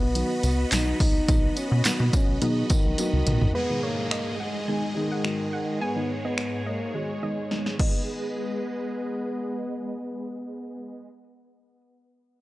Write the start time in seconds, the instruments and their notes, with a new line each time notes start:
Already playing: french horn B3, supersaw synth B3 F#4 D#5 B5
0.02 analog synth bass B1
0.15 synth stab D#3 F#3 B3 D#4 F#4, closed hi-hat, tambourine
0.43 analog synth bass C#2, closed hi-hat, tambourine
0.72 analog synth bass B1, synth stab D#3 F#3 B3 D#4 F#4, french horn D#4, snare, clap, closed hi-hat, tambourine
1.00 analog synth bass C2, french horn D#4, kick, open hi-hat, tambourine
1.28 analog synth bass B1, synth stab D#3 F#3 B3 D#4 F#4, kick, closed hi-hat, tambourine
1.57 french horn C#4, closed hi-hat, tambourine
1.72 analog synth bass B2
1.85 analog synth bass B2, synth stab D#3 F#3 B3 D#4 F#4, french horn B3, snare, clap, closed hi-hat, tambourine
2.00 analog synth bass B2
2.07 french horn D#4
2.13 french horn C#4, kick, closed hi-hat, tambourine
2.28 analog synth bass B1
2.41 analog synth bass B2, synth stab D#3 F#3 B3 D#4 G#4, french horn D#4, closed hi-hat
2.70 french horn D#3, kick, closed hi-hat, tambourine
2.85 analog synth bass B1
2.98 synth stab D#3 F#3 B3 D#4 F#4, closed hi-hat, high tom, tambourine
3.13 analog synth bass C#2
3.27 analog synth bass A#1, closed hi-hat, mid tom
3.42 analog synth bass A1, floor tom
3.55 supersaw synth G#2 G#3 G#4 D#5, french horn B3, synth pluck B4, downlifter
3.70 synth stab B2 D#3 G#3 D#4
3.83 french horn A#3, synth pluck C#5
4.11 synth pluck D#5, finger snap
4.40 french horn G#3, synth pluck F#5
4.68 synth stab D#3 G#3 B3 D#4, synth pluck G#5
4.96 synth stab D#3 G#3 B3 D#4, french horn D#3
5.12 synth pluck F#5
5.24 synth stab D#3 G#3 B3 F#4, finger snap
5.53 synth pluck F#5
5.81 french horn B3, supersaw synth C#5, synth pluck G#5
5.96 synth stab D#3 G#3 B3 D#4
6.25 french horn B3, synth pluck D#5
6.38 finger snap
6.66 french horn A#3, synth pluck D#5
6.94 synth stab D#3 G#3 B3 F#4, french horn G#3
7.23 synth stab D#3 G#3 B3 D#4, synth pluck D#5
7.51 synth stab D#3 G#3 B3 D#4, snare
7.66 snare
7.77 synth stab D#3 G#3 B3, supersaw synth G#3 G#4 B4 D#5, french horn B3, synth pluck D#5, kick, crash
7.81 synth stab D#4